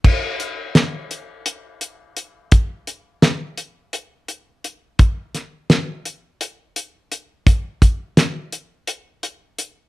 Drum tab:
CC |x------|-------|-------|-------|
HH |-xxxxxx|xxxxxxx|xxxxxxx|xxxxxxx|
SD |--o----|--o----|-oo----|--o----|
BD |o------|o------|o------|oo-----|